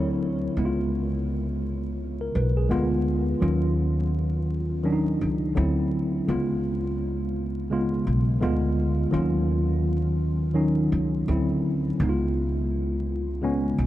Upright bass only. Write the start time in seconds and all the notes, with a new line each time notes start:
Already playing: D2
0.57 C#2
2.35 B1
2.71 D2
3.42 D#2
5.21 C#2
5.57 D2
6.28 C#2
8.07 B1
8.42 D2
9.14 D#2
10.92 C#2
11.28 D2
12.00 C#2
13.78 B1